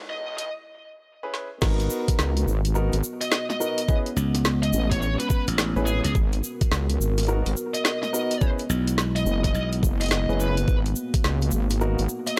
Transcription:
Already playing: G#3 B3 E4
0.10 B1 D#5
0.38 D#5, closed hi-hat
1.23 C#4 E4 G#4 B4
1.34 snare
1.61 G#1 B3 D#4 F#4 A#4, kick, snare, crash, cabasa
1.80 closed hi-hat, cabasa
1.90 cabasa
2.08 kick, closed hi-hat, cabasa
2.19 C#2, snare, cabasa
2.37 closed hi-hat, cabasa
2.47 G#1, cabasa
2.65 closed hi-hat, cabasa
2.75 B3 D#4 F#4 A#4, cabasa
2.92 G#1, closed hi-hat, cabasa
3.03 cabasa
3.21 D#5, closed hi-hat, cabasa
3.31 D#5, snare, cabasa
3.50 D#5, snare, cabasa
3.60 B3 D#4 F#4 A#4, cabasa
3.78 closed hi-hat, cabasa
3.88 G#3 C#4 E4 G#4 B4, kick, cabasa
4.06 closed hi-hat, cabasa
4.16 C#2, cabasa
4.35 snare, closed hi-hat, cabasa
4.45 snare, cabasa
4.63 D#5, closed hi-hat, cabasa
4.73 A1, cabasa
4.91 C#5, kick, snare, closed hi-hat, cabasa
5.01 C#5, cabasa
5.19 B4, closed hi-hat, cabasa
5.29 B4, kick, cabasa
5.47 A1, closed hi-hat, cabasa
5.58 snare, cabasa
5.76 A1 C#4 E4 G#4 B4, cabasa
5.86 G#4, cabasa
6.04 C#2 G#4, closed hi-hat, cabasa
6.15 G#1 B3 F#4 A#4, kick, cabasa
6.32 closed hi-hat, cabasa
6.44 cabasa
6.61 kick, closed hi-hat, cabasa
6.71 C#2, snare, cabasa
6.90 closed hi-hat, cabasa
7.00 G#1, cabasa
7.18 snare, closed hi-hat, cabasa
7.20 closed hi-hat
7.23 closed hi-hat
7.25 B3 D#4 F#4 A#4, closed hi-hat, cabasa
7.46 G#1, closed hi-hat, cabasa
7.57 cabasa
7.74 D#5, closed hi-hat, cabasa
7.85 D#5, snare, cabasa
8.02 D#5, snare, cabasa
8.13 B3 D#4 F#4 A#4, cabasa
8.31 closed hi-hat, cabasa
8.41 G#3 C#4 E4 G#4 B4, kick, cabasa
8.58 closed hi-hat, cabasa
8.70 B1, cabasa
8.87 closed hi-hat, cabasa
8.98 snare, cabasa
9.16 D#5, closed hi-hat, cabasa
9.26 F#1, cabasa
9.44 D#5, kick, snare, closed hi-hat, cabasa
9.54 B1, cabasa
9.72 closed hi-hat, cabasa
9.83 F#1, kick, cabasa
10.00 D#5, closed hi-hat, cabasa
10.03 closed hi-hat
10.06 closed hi-hat
10.08 snare, closed hi-hat, cabasa
10.29 F#1 C#4 E4 G#4 B4, cabasa
10.40 B4, cabasa
10.57 closed hi-hat, cabasa
10.68 G#1 A#3 F#4, kick, cabasa
10.86 closed hi-hat, cabasa
10.96 cabasa
11.14 kick, closed hi-hat, cabasa
11.24 C#2, snare, cabasa
11.41 closed hi-hat, cabasa
11.51 G#1, cabasa
11.70 snare, closed hi-hat, cabasa
11.81 B3 D#4 F#4 A#4, cabasa
11.98 G#1, closed hi-hat, cabasa
12.09 cabasa
12.26 D#5, closed hi-hat, cabasa

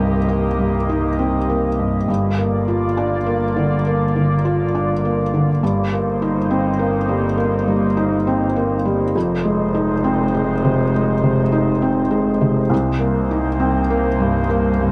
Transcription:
Already playing: C2 G2 A#3 C4 D#4 G4 D#5
0.28 A#3
0.59 G2
0.89 D#4
1.19 C4
1.49 A#3
1.79 G2
2.08 G1 G2 A#3 F4 D5
2.38 A#3
2.68 F4
2.97 D4
3.26 A#3
3.56 D3
3.86 A#3
4.16 D3
4.45 F4
4.75 D4
5.05 A#3
5.34 D3
5.61 G1 G2 A#3 D#4 C5
5.92 A#3
6.22 D#4
6.50 C4
6.79 A#3
7.09 G3
7.37 A#3
7.67 G3
7.97 D#4
8.27 C4
8.56 A#3
8.85 G3
9.15 F1 F2 G#3 D#4 C5
9.45 G#3
9.74 D#4
10.04 C4
10.34 G#3
10.65 C3
10.94 G#3
11.23 C3
11.52 D#4
11.82 C4
12.11 G#3
12.41 C3
12.70 C2 A#3 D#4 C5
12.99 A#3
13.31 D#4
13.60 C4
13.90 A#3
14.20 G2
14.50 A#3
14.80 G2

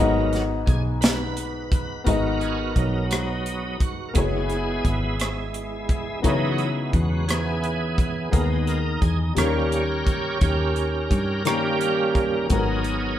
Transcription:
Already playing: G#2 F#3 B3 D#4 F#4 A#4
0.00 G#1 G#4 D#5
0.33 snare, closed hi-hat
0.66 B1 G#4, kick, closed hi-hat
1.01 B4, snare, closed hi-hat
1.37 closed hi-hat
1.72 kick, closed hi-hat
2.04 G#1 G#2 B3 D#4 F#4 G#4 A#4, kick, closed hi-hat
2.08 D#5
2.40 G#4, closed hi-hat
2.57 F#4
2.75 B1 F#3 B3 D#4, kick, closed hi-hat
3.11 cross-stick, closed hi-hat
3.46 closed hi-hat
3.63 D#4
3.80 F#4, kick, closed hi-hat
4.09 A#4
4.14 F#1 G#3 B3 E4 F#4 G#4, kick, closed hi-hat
4.18 C#5
4.50 cross-stick, closed hi-hat
4.84 G#1, kick, closed hi-hat
5.20 cross-stick, closed hi-hat
5.54 closed hi-hat
5.89 kick, closed hi-hat
6.22 C#2 C#3 E3 F#3 G#3 B3 D#4 E4 F#4 C#5 D#5, kick, closed hi-hat
6.52 F#4
6.58 E4, closed hi-hat
6.93 E2 F#4, kick, closed hi-hat
7.28 E3 B3 G#4, cross-stick, closed hi-hat
7.64 closed hi-hat
7.98 kick, closed hi-hat
8.31 D#2 D#3 G#3 B3 D#4 G#4 A#4, kick, closed hi-hat
8.67 A#4, cross-stick, closed hi-hat
9.02 E2 G#4, kick, closed hi-hat
9.35 D#2 D#3 G3 A#3 C#4 D#4 G4 A#4 C#5, cross-stick, closed hi-hat
9.39 A#4
9.72 closed hi-hat
10.07 kick, closed hi-hat
10.41 D#2 C#4 G4 A#4, kick, closed hi-hat
10.76 closed hi-hat
11.11 G2, kick, closed hi-hat
11.45 D#3 G3 A#3 C#4 D#4 G4 A#4, cross-stick, closed hi-hat
11.81 closed hi-hat
12.15 kick, closed hi-hat
12.49 G#1 G#2 F#3 G#3 B3 D#4 F#4 G#4 A#4, kick, closed hi-hat
12.84 closed hi-hat

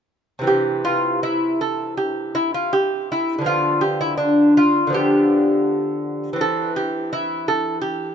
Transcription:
0.39 C3 E3
0.43 C4 G4
0.85 F4
1.23 E4
1.61 A4
1.97 G4
2.35 E4
2.54 F4
2.73 G4
3.12 E4
3.38 D3 F3
3.44 B3 F4
3.81 G4
4.01 E4
4.17 D4
4.57 F4
4.87 D3 F3
4.93 B3 G4
6.33 E3 C4
6.41 A4
6.76 G4
7.13 E4
7.48 A4
7.82 G4

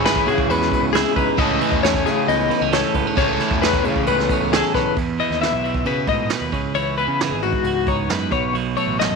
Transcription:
Already playing: G#1 C#3 E3 G#3 C#4 E4 G#4
0.05 B4, snare, ride
0.16 kick
0.27 C#3 F#4 G#4, ride
0.38 kick
0.48 E2 B3 B4, ride
0.62 snare
0.72 kick, ride
0.82 C#2
0.93 E4 G#4, snare, ride
1.08 snare
1.16 C#2 D#4 B4, kick, ride
1.38 C#2 C#3 E3 A3 C#4 A4 D#5, kick, ride
1.61 E3, ride
1.72 E2, kick
1.83 C#4 C#5, snare, ride
1.94 kick
2.05 C#3 G#4, snare, ride
2.27 C#2 B3 D#5, ride
2.50 B3, ride
2.61 C#2 C#4
2.72 A4 C#5, snare, ride
2.94 C#2 B3 B4, kick, ride
3.07 C#4
3.16 C#2 C#3 E3 A3 C#4 C#5, kick, ride
3.20 A4
3.39 E3, snare, ride
3.50 E2, kick
3.62 C#4 B4, snare, ride
3.73 kick
3.84 C#3 G#4, ride
3.96 kick
4.06 C#2 B3 B4, ride
4.20 snare
4.29 C#4, kick, ride
4.41 C#2
4.53 G#4 A4, snare, ride
4.74 B1 C#4 B4, kick, snare, ride
4.96 E2, kick, ride
5.20 E3 D#5, ride
5.29 D#2, snare
5.41 B3 E5, snare, ride
5.52 B1
5.64 E3, ride
5.74 kick
5.85 B2 C#3 B4, ride
6.07 G#2 A2 D#5, kick, ride
6.29 B2 B4, snare, ride
6.41 D#2
6.52 C#2 C#3, kick, ride
6.75 E3 C#5, ride
6.98 B3 B4, ride
7.08 C#3
7.20 E3 G#4, snare, ride
7.29 G#1
7.42 G#2 F#4, ride
7.53 kick
7.63 C#2 F#4, ride
7.87 D#4 C#5, kick, ride
8.08 F#2 B3 B4, snare, ride
8.32 B1 B2 C#5, kick, ride
8.53 B1 F#3, ride
8.77 A3 C#5, ride
8.87 A1
8.99 F#3 D#5, snare, ride
9.10 F#2

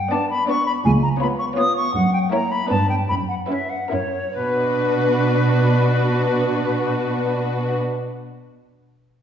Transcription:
Already playing: G5
0.11 B3 D4 D5 A5
0.30 B5
0.48 B3 D4 D5 C#6
0.66 B5
0.85 C#2 G#5
1.03 A#5
1.21 B3 F4 C#5 B5
1.39 C#6
1.58 B3 F4 C#5 D#6
1.76 C#6
1.95 F#2 F#5
2.13 G5
2.32 A#3 E4 C#5 A#5
2.51 B5
2.70 G2 B3 D4 B4 A5
2.89 G5
3.09 F#2 B5
3.29 F#5
3.49 C#4 E4 B4 E5
3.70 F#5
3.91 F#2 C#4 E4 A#4 C#5
4.34 B2 D4 F#4 B4

